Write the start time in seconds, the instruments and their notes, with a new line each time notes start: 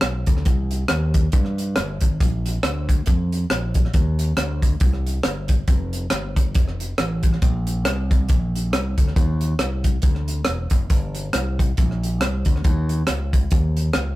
0.01 fingered electric bass B1, cross-stick, closed hi-hat
0.26 fingered electric bass D2, kick, closed hi-hat
0.37 cross-stick
0.45 fingered electric bass C2, kick, closed hi-hat
0.71 closed hi-hat
0.88 fingered electric bass D#2, cross-stick, closed hi-hat
1.14 kick, closed hi-hat
1.32 fingered electric bass G2, kick, closed hi-hat
1.45 cross-stick
1.58 closed hi-hat
1.76 fingered electric bass G1, cross-stick, closed hi-hat
2.01 fingered electric bass G#1, kick, closed hi-hat
2.20 fingered electric bass A#1, kick, closed hi-hat
2.46 closed hi-hat
2.63 fingered electric bass D2, cross-stick, closed hi-hat
2.89 kick, closed hi-hat
3.06 fingered electric bass F2, kick, closed hi-hat
3.32 closed hi-hat
3.50 fingered electric bass A#1, cross-stick, closed hi-hat
3.74 kick, closed hi-hat
3.85 cross-stick
3.94 fingered electric bass D#2, kick, closed hi-hat
4.19 closed hi-hat
4.37 fingered electric bass D2, cross-stick, closed hi-hat
4.62 kick, closed hi-hat
4.80 fingered electric bass C2, kick, closed hi-hat
4.93 cross-stick
5.07 closed hi-hat
5.23 fingered electric bass G1, cross-stick, closed hi-hat
5.48 kick, closed hi-hat
5.68 fingered electric bass F1, kick, closed hi-hat
5.93 closed hi-hat
6.10 fingered electric bass G1, cross-stick, closed hi-hat
6.36 kick, closed hi-hat
6.55 fingered electric bass F1, kick, closed hi-hat
6.68 cross-stick
6.80 closed hi-hat
6.98 fingered electric bass A1, cross-stick, closed hi-hat
7.23 kick, closed hi-hat
7.33 cross-stick
7.42 fingered electric bass A#1, kick, closed hi-hat
7.67 closed hi-hat
7.85 fingered electric bass C2, cross-stick, closed hi-hat
8.11 kick, closed hi-hat
8.29 fingered electric bass A#1, kick, closed hi-hat
8.56 closed hi-hat
8.73 fingered electric bass C2, cross-stick, closed hi-hat
8.98 fingered electric bass D2, kick, closed hi-hat
9.07 cross-stick
9.16 fingered electric bass D#2, kick, closed hi-hat
9.41 closed hi-hat
9.59 fingered electric bass C2, cross-stick, closed hi-hat
9.84 kick, closed hi-hat
10.02 fingered electric bass D2, kick, closed hi-hat
10.15 cross-stick
10.28 closed hi-hat
10.45 fingered electric bass E1, cross-stick, closed hi-hat
10.70 fingered electric bass F#1, kick, closed hi-hat
10.90 fingered electric bass G1, kick, closed hi-hat
11.15 closed hi-hat
11.33 fingered electric bass C2, cross-stick, closed hi-hat
11.59 kick, closed hi-hat
11.77 fingered electric bass A#1, kick, closed hi-hat
11.91 cross-stick
12.03 closed hi-hat
12.21 fingered electric bass C2, cross-stick, closed hi-hat
12.45 fingered electric bass D2, kick, closed hi-hat
12.56 cross-stick
12.64 fingered electric bass D#2, kick, closed hi-hat
12.89 closed hi-hat
13.07 fingered electric bass C#2, cross-stick, closed hi-hat
13.33 kick, closed hi-hat
13.51 fingered electric bass D#2, kick, closed hi-hat
13.77 closed hi-hat
13.93 fingered electric bass C#2, cross-stick, closed hi-hat